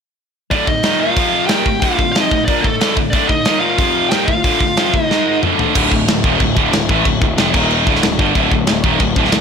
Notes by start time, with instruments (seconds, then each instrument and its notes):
0.51 distorted electric guitar D2 A2 D3, lead electric guitar D4 D5, kick, open hi-hat
0.67 distorted electric guitar D2 A2, lead electric guitar D#4 D#5, kick
0.83 distorted electric guitar D#2 A#2 D#3, snare, open hi-hat
1.00 lead electric guitar F4 F5
1.16 distorted electric guitar F2 C3 F3, kick, open hi-hat
1.47 distorted electric guitar D#2 A#2, lead electric guitar G4 G5, snare, open hi-hat
1.51 distorted electric guitar D#3
1.66 distorted electric guitar D2 A2, kick
1.80 distorted electric guitar D2 A2 D3, lead electric guitar F4 F5, kick, open hi-hat
1.98 distorted electric guitar D2 A2, kick
2.12 distorted electric guitar F2 C3 F3, lead electric guitar F4 F5, snare, open hi-hat
2.20 lead electric guitar D#4 D#5
2.31 distorted electric guitar D2 A2, kick
2.45 distorted electric guitar A#2 F3 A#3, lead electric guitar D4 D5, kick, open hi-hat
2.61 distorted electric guitar D2 A2, lead electric guitar A3 A4, kick
2.80 distorted electric guitar D2 A2 D3, snare, open hi-hat
2.96 distorted electric guitar D2 A2, kick
3.11 distorted electric guitar D2 A2 D3, lead electric guitar D4 D5, kick, open hi-hat
3.27 distorted electric guitar D2 A2, lead electric guitar D#4 D#5, kick
3.45 distorted electric guitar D#2 A#2 D#3, snare, open hi-hat
3.60 lead electric guitar F4 F5
3.78 distorted electric guitar F2 C3 F3, kick, open hi-hat
4.09 distorted electric guitar D#2 A#2, lead electric guitar G4 G5, snare, open hi-hat
4.13 distorted electric guitar D#3
4.25 lead electric guitar F4 F5, kick
4.29 distorted electric guitar D2 A2
4.44 distorted electric guitar D2 A2 D3, kick, open hi-hat
4.61 distorted electric guitar D2 A2, kick
4.77 distorted electric guitar F2 C3 F3, snare, open hi-hat
4.94 distorted electric guitar D2 A2, kick
5.02 lead electric guitar D#4 D#5
5.11 distorted electric guitar G#2 D#3 G#3, snare
5.43 distorted electric guitar D2 A2 D3, mid tom
5.59 floor tom
5.75 picked electric bass D1, distorted electric guitar D2 A2 D3, kick, crash
5.92 picked electric bass D1, distorted electric guitar D2 A2, kick
6.07 picked electric bass D1, distorted electric guitar D2 A2, snare, crash
6.24 picked electric bass D#1, distorted electric guitar D#2 A#2 D#3, kick
6.40 picked electric bass D1, distorted electric guitar D2 A2, kick, crash
6.56 picked electric bass D1, distorted electric guitar D2 A2 D3, kick
6.73 picked electric bass D1, distorted electric guitar D2 A2, snare, crash
6.88 picked electric bass A1, distorted electric guitar A2 E3 A3, kick
7.05 picked electric bass D1, distorted electric guitar D2 A2, kick, crash
7.21 picked electric bass D1, distorted electric guitar D2 A2, kick
7.37 picked electric bass F1, distorted electric guitar F2 C3 F3, snare, crash
7.54 picked electric bass D#1, distorted electric guitar D#2 A#2 D#3, kick, crash
7.71 crash
7.86 picked electric bass D1, distorted electric guitar D2 A2 D3, kick
7.95 snare
8.03 picked electric bass D1, distorted electric guitar D2 A2, snare, crash
8.19 picked electric bass G1, distorted electric guitar G2 D3 G3, kick
8.35 picked electric bass D1, distorted electric guitar D2 A2 D3, kick, crash
8.51 picked electric bass D1, distorted electric guitar D2 A2, kick
8.67 picked electric bass D1, distorted electric guitar D2 A2, snare, crash
8.84 picked electric bass D#1, distorted electric guitar D#2 A#2 D#3, kick
8.99 picked electric bass D1, distorted electric guitar D2 A2, kick, crash
9.16 picked electric bass D1, distorted electric guitar D2 A2 D3, kick
9.25 snare
9.32 picked electric bass D1, distorted electric guitar D2 A2, snare, crash